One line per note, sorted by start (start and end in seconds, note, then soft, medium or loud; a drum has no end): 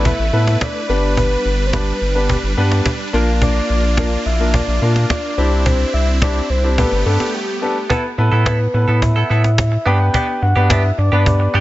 0.00 0.12 A1 medium
0.00 0.87 A3 medium
0.00 0.85 E4 medium
0.00 0.10 A4 medium
0.00 0.10 B4 medium
0.00 3.09 B4 medium
0.05 0.63 E5 loud
0.05 cajon bass loud
0.19 0.31 A1 medium
0.33 0.57 A2 medium
0.33 0.58 B3 medium
0.33 0.58 E4 medium
0.33 0.59 A4 medium
0.33 0.59 B4 medium
0.47 cajon slap medium
0.61 1.17 D5 medium
0.61 cajon bass medium
0.61 cajon slap loud
0.89 1.36 G1 medium
0.89 3.11 G3 medium
0.89 1.56 B3 medium
0.89 1.57 D4 medium
0.89 6.74 D4 medium
0.89 1.57 G4 medium
0.89 1.57 B4 medium
1.17 1.63 B4 loud
1.17 cajon bass loud
1.45 1.92 G1 loud
1.66 1.75 C5 medium
1.73 1.92 B3 medium
1.73 1.92 D4 medium
1.73 1.92 G4 medium
1.73 2.57 B4 medium
1.73 1.92 B4 medium
1.73 cajon bass loud
1.73 cajon slap loud
2.01 2.37 G1 medium
2.15 2.34 B3 medium
2.15 2.34 D4 medium
2.15 2.34 G4 medium
2.15 2.34 B4 medium
2.29 cajon bass loud
2.43 2.55 G1 medium
2.57 2.81 G2 medium
2.57 2.83 B3 medium
2.57 2.83 D4 medium
2.57 2.83 G4 medium
2.57 2.83 B4 medium
2.72 cajon slap medium
2.86 cajon bass loud
2.86 cajon slap medium
3.13 3.61 A#1 medium
3.13 3.81 A#3 loud
3.13 5.36 A#3 medium
3.13 3.81 D4 medium
3.13 3.81 F4 medium
3.13 5.36 F4 medium
3.13 3.81 A#4 loud
3.42 4.27 D5 loud
3.42 cajon bass loud
3.70 4.17 A#1 loud
3.97 4.17 A#3 medium
3.97 4.17 D4 medium
3.97 4.17 F4 medium
3.97 4.17 A#4 medium
3.97 cajon bass loud
3.97 cajon slap loud
4.26 4.61 A#1 medium
4.26 4.55 E5 loud
4.40 4.59 A#3 medium
4.40 4.59 D4 medium
4.40 4.59 F4 medium
4.40 4.59 A#4 medium
4.54 5.09 D5 loud
4.54 cajon bass loud
4.68 4.80 A#1 medium
4.82 5.05 A#2 medium
4.82 5.07 A#3 medium
4.82 5.07 D4 medium
4.82 5.07 F4 medium
4.82 5.07 A#4 medium
4.96 cajon slap medium
5.10 5.67 D5 loud
5.10 cajon bass loud
5.10 cajon slap loud
5.38 5.85 C2 medium
5.38 6.05 C4 medium
5.38 6.77 C4 medium
5.38 6.05 D4 medium
5.38 6.77 E4 medium
5.38 6.05 E4 medium
5.38 6.05 G4 medium
5.65 5.93 C5 loud
5.65 cajon bass loud
5.94 6.41 C2 loud
5.94 6.06 E5 loud
6.22 6.41 C4 medium
6.22 6.41 D4 medium
6.22 6.41 E4 medium
6.22 6.41 G4 medium
6.22 6.51 D5 loud
6.22 cajon bass loud
6.22 cajon slap loud
6.50 6.85 C2 medium
6.50 6.77 C5 loud
6.64 6.78 C4 medium
6.64 6.77 D4 medium
6.64 6.78 E4 medium
6.64 6.77 G4 medium
6.78 7.89 A3 medium
6.78 7.01 B3 medium
6.78 7.89 B3 medium
6.78 7.01 D4 medium
6.78 7.89 G4 medium
6.78 7.01 G4 medium
6.78 7.01 A4 medium
6.78 7.04 B4 medium
6.78 cajon bass loud
6.92 7.04 G1 medium
7.06 7.18 G2 medium
7.06 7.31 B3 medium
7.06 7.31 D4 medium
7.06 7.32 G4 medium
7.06 7.36 A4 medium
7.06 7.32 A4 medium
7.20 cajon slap medium
7.34 7.76 G4 medium
7.62 7.75 B3 medium
7.62 7.75 D4 medium
7.62 7.75 G4 medium
7.62 7.75 A4 medium
7.90 8.09 B3 medium
7.90 8.03 B3 medium
7.90 8.03 E4 medium
7.90 8.04 E4 medium
7.90 8.03 A4 medium
7.90 8.03 B4 medium
7.90 cajon bass loud
8.04 muted clean electric guitar stroke soft
8.18 8.30 A2 loud
8.18 8.43 B3 medium
8.18 8.44 E4 medium
8.18 8.44 A4 medium
8.18 8.44 B4 medium
8.18 muted clean electric guitar stroke soft
8.32 8.67 A2 medium
8.32 8.44 B3 medium
8.32 8.45 E4 medium
8.32 8.46 A4 medium
8.45 8.65 B3 medium
8.45 8.59 E4 medium
8.45 8.58 A4 medium
8.45 9.04 B4 medium
8.45 cajon bass loud
8.45 cajon slap loud
8.45 cajon slap medium
8.60 muted clean electric guitar stroke soft
8.74 8.86 A2 loud
8.74 9.25 B3 medium
8.74 9.25 E4 medium
8.74 9.25 A4 medium
8.74 9.25 B4 medium
8.74 muted clean electric guitar stroke soft
8.88 9.24 A2 medium
8.88 9.01 B3 medium
8.88 9.01 E4 medium
8.88 9.01 A4 medium
9.02 9.88 E5 loud
9.02 muted clean electric guitar stroke soft
9.02 cajon bass loud
9.16 9.28 B3 soft
9.16 9.29 E4 medium
9.16 9.30 A4 medium
9.30 9.77 A2 loud
9.30 9.49 B3 medium
9.30 9.44 E4 medium
9.30 9.43 A4 medium
9.44 muted clean electric guitar stroke soft
9.44 cajon slap medium
9.58 cajon bass loud
9.58 cajon slap loud
9.58 cajon slap medium
9.72 muted clean electric guitar stroke soft
9.86 10.10 G2 loud
9.86 10.05 B3 medium
9.86 10.42 B3 medium
9.86 10.42 D4 medium
9.86 9.99 D4 medium
9.86 10.42 G4 medium
9.86 9.98 G4 medium
9.86 10.43 B4 medium
9.86 10.14 G5 loud
10.00 muted clean electric guitar stroke soft
10.14 10.33 B3 medium
10.14 10.27 D4 medium
10.14 10.27 G4 medium
10.14 10.40 G5 loud
10.14 cajon bass loud
10.28 muted clean electric guitar stroke medium
10.42 10.54 G2 loud
10.42 10.72 F#5 loud
10.42 muted clean electric guitar stroke soft
10.56 10.92 G2 medium
10.56 10.82 B3 medium
10.56 10.68 B3 medium
10.56 10.82 D4 medium
10.56 10.69 D4 medium
10.56 10.70 G4 medium
10.56 10.82 G4 medium
10.56 10.82 B4 medium
10.70 10.89 B3 medium
10.70 10.84 D4 medium
10.70 10.83 G4 medium
10.70 10.98 E5 loud
10.70 cajon bass loud
10.70 cajon slap loud
10.70 cajon slap medium
10.84 muted clean electric guitar stroke soft
10.98 11.10 G2 loud
10.98 11.25 D5 medium
10.98 muted clean electric guitar stroke soft
11.12 11.48 G2 medium
11.12 11.60 B3 medium
11.12 11.25 B3 medium
11.12 11.60 D4 medium
11.12 11.25 D4 medium
11.12 11.26 G4 medium
11.12 11.60 G4 medium
11.12 11.60 B4 medium
11.26 11.60 D5 loud
11.26 muted clean electric guitar stroke soft
11.26 cajon bass loud
11.40 muted clean electric guitar stroke medium
11.54 11.60 G2 loud
11.54 11.60 B3 medium
11.54 11.60 D4 medium
11.54 11.60 G4 loud